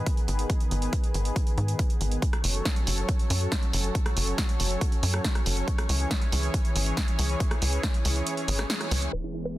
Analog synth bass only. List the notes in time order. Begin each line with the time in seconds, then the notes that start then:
0.28 G#1
0.71 G#1
1.14 G#1
1.58 G#2
2.01 G#1
2.44 F#1
2.87 F#1
3.30 F#2
3.73 F#1
4.17 F#1
4.60 F#1
5.03 F#2
5.46 F#1
5.89 C#2
6.32 C#2
6.76 G#1
7.19 C#2
7.62 C#2
8.05 C#2
8.48 G#1
8.91 C#2
9.13 E1